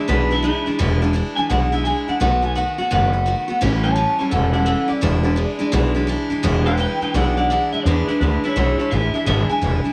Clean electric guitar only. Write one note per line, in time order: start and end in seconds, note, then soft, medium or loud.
0.09 0.31 B4 medium
0.32 0.43 E4 loud
0.45 0.66 E4 loud
1.36 1.49 G#5 loud
1.50 1.72 F#5 loud
1.73 1.85 E5 medium
1.84 2.07 G#5 loud
2.09 2.19 F#5 medium
2.20 2.43 F#5 loud
2.43 2.55 G#5 loud
2.56 2.78 F#5 medium
2.79 2.91 F#5 medium
2.92 3.60 F#5 loud
3.83 3.93 C#5 medium
3.83 3.94 A5 loud
3.94 4.17 C#5 medium
3.94 4.18 A5 loud
4.19 4.31 C#5 medium
4.19 4.31 A5 medium
4.30 4.52 A4 medium
4.30 4.51 F#5 medium
4.53 4.64 A4 medium
4.53 4.64 F#5 medium
4.65 4.88 A4 medium
4.65 4.89 F#5 medium
4.89 5.92 D5 loud
6.66 6.78 B4 loud
6.66 6.79 G5 loud
6.79 7.01 B4 medium
6.79 7.02 G5 medium
7.02 7.14 B4 medium
7.02 7.15 G5 medium
7.15 7.36 D5 medium
7.15 7.37 F#5 medium
7.37 7.48 D5 medium
7.37 7.49 F#5 loud
7.49 7.71 D5 medium
7.49 7.72 F#5 loud
7.72 7.85 E5 loud
7.84 8.06 D4 medium
7.84 8.06 B4 medium
8.08 8.19 D4 medium
8.08 8.20 B4 medium
8.20 8.44 D4 medium
8.20 8.45 B4 medium
8.44 8.55 E4 medium
8.44 8.56 C#5 medium
8.56 8.77 E4 medium
8.56 8.78 C#5 medium
8.78 8.91 E4 medium
8.78 8.90 C#5 medium
8.90 9.13 G#4 medium
8.90 9.13 E5 medium
9.14 9.24 G#4 medium
9.14 9.26 E5 medium
9.26 9.48 G#4 medium
9.26 9.49 E5 loud
9.50 9.84 G#5 loud